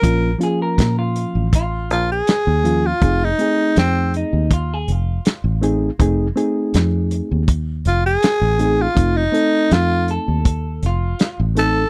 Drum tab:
HH |xxxxxxxx|xxxxxxxx|xxxxxxxx|xxxxxxxx|
SD |--o---o-|--o---o-|--o---o-|--o---o-|
BD |o-o-o---|o---o---|o---o---|o---o---|